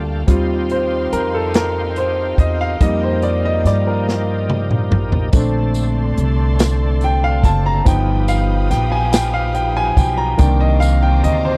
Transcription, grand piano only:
0, 0, Header, 1, 2, 480
1, 0, Start_track
1, 0, Key_signature, -2, "major"
1, 0, Tempo, 843052
1, 159, Time_signature, 6, 3, 24, 8
1, 6588, End_track
2, 0, Start_track
2, 0, Title_t, "Grand piano"
2, 0, Program_c, 0, 0
2, 0, Control_c, 0, 64, 127
2, 0, Note_on_c, 0, 57, 42
2, 0, Note_on_c, 0, 58, 38
2, 0, Note_on_c, 0, 65, 46
2, 155, Note_on_c, 0, 55, 51
2, 161, Note_on_c, 0, 60, 46
2, 163, Note_off_c, 0, 65, 0
2, 163, Note_on_c, 0, 65, 60
2, 167, Control_c, 0, 64, 0
2, 168, Note_off_c, 0, 57, 0
2, 170, Note_off_c, 0, 58, 0
2, 277, Control_c, 0, 64, 127
2, 407, Note_on_c, 0, 72, 72
2, 476, Note_off_c, 0, 55, 0
2, 479, Note_off_c, 0, 60, 0
2, 480, Note_off_c, 0, 65, 0
2, 627, Note_off_c, 0, 72, 0
2, 642, Note_on_c, 0, 70, 74
2, 764, Note_off_c, 0, 70, 0
2, 765, Note_on_c, 0, 69, 67
2, 886, Note_off_c, 0, 69, 0
2, 888, Note_on_c, 0, 70, 78
2, 1125, Note_on_c, 0, 72, 78
2, 1131, Note_off_c, 0, 70, 0
2, 1346, Note_off_c, 0, 72, 0
2, 1360, Note_on_c, 0, 75, 86
2, 1471, Note_off_c, 0, 75, 0
2, 1485, Note_on_c, 0, 77, 86
2, 1597, Note_on_c, 0, 55, 55
2, 1598, Note_on_c, 0, 58, 48
2, 1601, Note_on_c, 0, 63, 56
2, 1601, Note_on_c, 0, 75, 92
2, 1606, Note_off_c, 0, 77, 0
2, 1607, Control_c, 0, 64, 0
2, 1692, Control_c, 0, 64, 127
2, 1724, Note_off_c, 0, 75, 0
2, 1727, Note_on_c, 0, 72, 76
2, 1841, Note_on_c, 0, 74, 85
2, 1847, Note_off_c, 0, 72, 0
2, 1964, Note_off_c, 0, 74, 0
2, 1966, Note_on_c, 0, 75, 79
2, 2074, Note_off_c, 0, 75, 0
2, 2089, Note_on_c, 0, 74, 75
2, 2117, Note_off_c, 0, 74, 0
2, 2205, Note_on_c, 0, 70, 65
2, 2295, Note_off_c, 0, 55, 0
2, 2296, Note_off_c, 0, 58, 0
2, 2298, Note_off_c, 0, 63, 0
2, 2659, Note_off_c, 0, 70, 0
2, 3035, Note_on_c, 0, 57, 52
2, 3039, Note_on_c, 0, 60, 52
2, 3042, Note_on_c, 0, 62, 55
2, 3046, Control_c, 0, 64, 0
2, 3155, Control_c, 0, 64, 127
2, 3357, Note_off_c, 0, 57, 0
2, 3358, Note_off_c, 0, 60, 0
2, 3360, Note_off_c, 0, 62, 0
2, 4009, Note_on_c, 0, 79, 90
2, 4121, Note_on_c, 0, 77, 87
2, 4128, Note_off_c, 0, 79, 0
2, 4241, Note_on_c, 0, 81, 98
2, 4244, Note_off_c, 0, 77, 0
2, 4352, Note_off_c, 0, 81, 0
2, 4361, Note_on_c, 0, 82, 92
2, 4466, Note_on_c, 0, 53, 56
2, 4470, Note_on_c, 0, 59, 51
2, 4476, Note_on_c, 0, 63, 62
2, 4481, Note_on_c, 0, 79, 99
2, 4484, Note_off_c, 0, 82, 0
2, 4488, Control_c, 0, 64, 0
2, 4590, Control_c, 0, 64, 127
2, 4717, Note_on_c, 0, 77, 91
2, 4728, Note_off_c, 0, 79, 0
2, 4957, Note_on_c, 0, 79, 81
2, 4966, Note_off_c, 0, 77, 0
2, 5070, Note_off_c, 0, 79, 0
2, 5077, Note_on_c, 0, 80, 82
2, 5190, Note_off_c, 0, 80, 0
2, 5196, Note_on_c, 0, 79, 87
2, 5316, Note_on_c, 0, 77, 84
2, 5322, Note_off_c, 0, 79, 0
2, 5429, Note_off_c, 0, 77, 0
2, 5435, Note_on_c, 0, 79, 87
2, 5561, Note_off_c, 0, 79, 0
2, 5561, Note_on_c, 0, 80, 93
2, 5672, Note_off_c, 0, 80, 0
2, 5677, Note_on_c, 0, 79, 92
2, 5706, Note_off_c, 0, 79, 0
2, 5793, Note_on_c, 0, 82, 87
2, 5890, Note_off_c, 0, 53, 0
2, 5892, Note_off_c, 0, 59, 0
2, 5895, Note_off_c, 0, 63, 0
2, 5906, Note_on_c, 0, 51, 54
2, 5910, Note_on_c, 0, 58, 51
2, 5913, Note_on_c, 0, 62, 63
2, 5915, Note_on_c, 0, 79, 97
2, 5920, Note_off_c, 0, 82, 0
2, 5927, Control_c, 0, 64, 0
2, 6014, Control_c, 0, 64, 127
2, 6029, Note_off_c, 0, 79, 0
2, 6038, Note_on_c, 0, 75, 83
2, 6150, Note_on_c, 0, 77, 85
2, 6162, Note_off_c, 0, 75, 0
2, 6232, Note_off_c, 0, 51, 0
2, 6234, Note_off_c, 0, 58, 0
2, 6235, Note_off_c, 0, 62, 0
2, 6278, Note_on_c, 0, 79, 89
2, 6279, Note_off_c, 0, 77, 0
2, 6397, Note_on_c, 0, 75, 84
2, 6403, Note_off_c, 0, 79, 0
2, 6519, Note_on_c, 0, 72, 79
2, 6522, Note_off_c, 0, 75, 0
2, 6588, Note_off_c, 0, 72, 0
2, 6588, End_track
0, 0, End_of_file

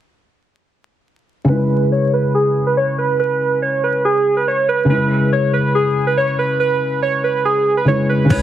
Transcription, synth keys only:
0, 0, Header, 1, 2, 480
1, 0, Start_track
1, 0, Key_signature, 4, "minor"
1, 0, Tempo, 425532
1, 1686, Time_signature, 4, 2, 24, 8
1, 9500, End_track
2, 0, Start_track
2, 0, Title_t, "Synth keys"
2, 0, Program_c, 0, 88
2, 1685, Note_on_c, 0, 71, 95
2, 2136, Note_off_c, 0, 71, 0
2, 2165, Note_on_c, 0, 73, 76
2, 2384, Note_off_c, 0, 73, 0
2, 2407, Note_on_c, 0, 71, 80
2, 2625, Note_off_c, 0, 71, 0
2, 2645, Note_on_c, 0, 68, 77
2, 2984, Note_off_c, 0, 68, 0
2, 3007, Note_on_c, 0, 71, 69
2, 3116, Note_off_c, 0, 71, 0
2, 3125, Note_on_c, 0, 73, 81
2, 3344, Note_off_c, 0, 73, 0
2, 3365, Note_on_c, 0, 71, 74
2, 3584, Note_off_c, 0, 71, 0
2, 3604, Note_on_c, 0, 71, 94
2, 4056, Note_off_c, 0, 71, 0
2, 4085, Note_on_c, 0, 73, 80
2, 4304, Note_off_c, 0, 73, 0
2, 4326, Note_on_c, 0, 71, 76
2, 4545, Note_off_c, 0, 71, 0
2, 4566, Note_on_c, 0, 68, 80
2, 4904, Note_off_c, 0, 68, 0
2, 4926, Note_on_c, 0, 71, 70
2, 5035, Note_off_c, 0, 71, 0
2, 5049, Note_on_c, 0, 73, 73
2, 5266, Note_off_c, 0, 73, 0
2, 5286, Note_on_c, 0, 71, 84
2, 5504, Note_off_c, 0, 71, 0
2, 5526, Note_on_c, 0, 71, 99
2, 5977, Note_off_c, 0, 71, 0
2, 6007, Note_on_c, 0, 73, 76
2, 6225, Note_off_c, 0, 73, 0
2, 6242, Note_on_c, 0, 71, 82
2, 6462, Note_off_c, 0, 71, 0
2, 6484, Note_on_c, 0, 68, 81
2, 6823, Note_off_c, 0, 68, 0
2, 6845, Note_on_c, 0, 71, 74
2, 6954, Note_off_c, 0, 71, 0
2, 6964, Note_on_c, 0, 73, 84
2, 7183, Note_off_c, 0, 73, 0
2, 7204, Note_on_c, 0, 71, 79
2, 7423, Note_off_c, 0, 71, 0
2, 7443, Note_on_c, 0, 71, 90
2, 7896, Note_off_c, 0, 71, 0
2, 7923, Note_on_c, 0, 73, 84
2, 8143, Note_off_c, 0, 73, 0
2, 8164, Note_on_c, 0, 71, 72
2, 8383, Note_off_c, 0, 71, 0
2, 8404, Note_on_c, 0, 68, 80
2, 8743, Note_off_c, 0, 68, 0
2, 8766, Note_on_c, 0, 71, 69
2, 8875, Note_off_c, 0, 71, 0
2, 8885, Note_on_c, 0, 73, 76
2, 9104, Note_off_c, 0, 73, 0
2, 9127, Note_on_c, 0, 71, 81
2, 9345, Note_off_c, 0, 71, 0
2, 9364, Note_on_c, 0, 71, 100
2, 9500, Note_off_c, 0, 71, 0
2, 9500, End_track
0, 0, End_of_file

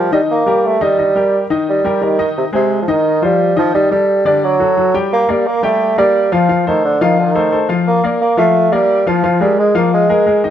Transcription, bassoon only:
0, 0, Header, 1, 2, 480
1, 0, Start_track
1, 0, Tempo, 343840
1, 1374, Time_signature, 4, 2, 24, 8
1, 14661, End_track
2, 0, Start_track
2, 0, Title_t, "Bassoon"
2, 0, Program_c, 0, 70
2, 0, Note_on_c, 0, 53, 100
2, 152, Note_off_c, 0, 53, 0
2, 188, Note_on_c, 0, 55, 86
2, 292, Note_off_c, 0, 55, 0
2, 434, Note_on_c, 0, 58, 97
2, 907, Note_on_c, 0, 57, 93
2, 928, Note_off_c, 0, 58, 0
2, 1150, Note_on_c, 0, 55, 108
2, 1171, Note_off_c, 0, 57, 0
2, 1967, Note_off_c, 0, 55, 0
2, 2360, Note_on_c, 0, 55, 87
2, 2840, Note_on_c, 0, 51, 79
2, 2861, Note_off_c, 0, 55, 0
2, 3189, Note_off_c, 0, 51, 0
2, 3317, Note_on_c, 0, 48, 81
2, 3420, Note_off_c, 0, 48, 0
2, 3561, Note_on_c, 0, 48, 93
2, 3906, Note_off_c, 0, 48, 0
2, 3938, Note_on_c, 0, 53, 62
2, 4036, Note_on_c, 0, 51, 93
2, 4057, Note_off_c, 0, 53, 0
2, 4521, Note_on_c, 0, 55, 101
2, 4542, Note_off_c, 0, 51, 0
2, 4989, Note_off_c, 0, 55, 0
2, 5003, Note_on_c, 0, 53, 93
2, 5215, Note_off_c, 0, 53, 0
2, 5233, Note_on_c, 0, 55, 104
2, 5450, Note_off_c, 0, 55, 0
2, 5465, Note_on_c, 0, 55, 95
2, 5908, Note_off_c, 0, 55, 0
2, 5956, Note_on_c, 0, 55, 89
2, 6198, Note_on_c, 0, 54, 100
2, 6219, Note_off_c, 0, 55, 0
2, 6908, Note_off_c, 0, 54, 0
2, 7157, Note_on_c, 0, 58, 96
2, 7402, Note_on_c, 0, 55, 83
2, 7423, Note_off_c, 0, 58, 0
2, 7632, Note_on_c, 0, 58, 97
2, 7652, Note_off_c, 0, 55, 0
2, 7864, Note_off_c, 0, 58, 0
2, 7877, Note_on_c, 0, 57, 90
2, 8314, Note_off_c, 0, 57, 0
2, 8349, Note_on_c, 0, 55, 100
2, 8835, Note_on_c, 0, 53, 87
2, 8856, Note_off_c, 0, 55, 0
2, 9305, Note_off_c, 0, 53, 0
2, 9315, Note_on_c, 0, 51, 81
2, 9529, Note_off_c, 0, 51, 0
2, 9555, Note_on_c, 0, 50, 91
2, 9801, Note_on_c, 0, 51, 84
2, 9822, Note_off_c, 0, 50, 0
2, 10028, Note_off_c, 0, 51, 0
2, 10042, Note_on_c, 0, 51, 83
2, 10698, Note_off_c, 0, 51, 0
2, 10989, Note_on_c, 0, 58, 96
2, 11205, Note_off_c, 0, 58, 0
2, 11467, Note_on_c, 0, 58, 89
2, 11683, Note_off_c, 0, 58, 0
2, 11702, Note_on_c, 0, 57, 99
2, 12181, Note_on_c, 0, 55, 105
2, 12202, Note_off_c, 0, 57, 0
2, 12655, Note_off_c, 0, 55, 0
2, 12676, Note_on_c, 0, 53, 83
2, 13110, Note_off_c, 0, 53, 0
2, 13144, Note_on_c, 0, 55, 86
2, 13360, Note_off_c, 0, 55, 0
2, 13389, Note_on_c, 0, 56, 87
2, 13603, Note_off_c, 0, 56, 0
2, 13633, Note_on_c, 0, 58, 78
2, 13844, Note_off_c, 0, 58, 0
2, 13872, Note_on_c, 0, 56, 82
2, 14529, Note_off_c, 0, 56, 0
2, 14661, End_track
0, 0, End_of_file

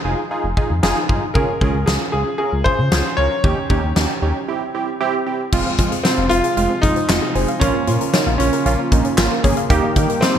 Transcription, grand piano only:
0, 0, Header, 1, 2, 480
1, 0, Start_track
1, 0, Key_signature, -4, "minor"
1, 0, Tempo, 521739
1, 1245, Time_signature, 4, 2, 24, 8
1, 9555, End_track
2, 0, Start_track
2, 0, Title_t, "Grand piano"
2, 0, Program_c, 0, 0
2, 1232, Note_on_c, 0, 70, 83
2, 1712, Note_on_c, 0, 68, 78
2, 1733, Note_off_c, 0, 70, 0
2, 1767, Note_off_c, 0, 68, 0
2, 1952, Note_on_c, 0, 68, 84
2, 2177, Note_off_c, 0, 68, 0
2, 2191, Note_on_c, 0, 68, 87
2, 2432, Note_on_c, 0, 72, 101
2, 2445, Note_off_c, 0, 68, 0
2, 2914, Note_on_c, 0, 73, 108
2, 2933, Note_off_c, 0, 72, 0
2, 3366, Note_off_c, 0, 73, 0
2, 5552, Note_on_c, 0, 60, 93
2, 5781, Note_off_c, 0, 60, 0
2, 5791, Note_on_c, 0, 65, 122
2, 6244, Note_off_c, 0, 65, 0
2, 6271, Note_on_c, 0, 63, 106
2, 6988, Note_on_c, 0, 61, 94
2, 7020, Note_off_c, 0, 63, 0
2, 7695, Note_off_c, 0, 61, 0
2, 7709, Note_on_c, 0, 61, 85
2, 8640, Note_off_c, 0, 61, 0
2, 9392, Note_on_c, 0, 60, 101
2, 9555, Note_off_c, 0, 60, 0
2, 9555, End_track
0, 0, End_of_file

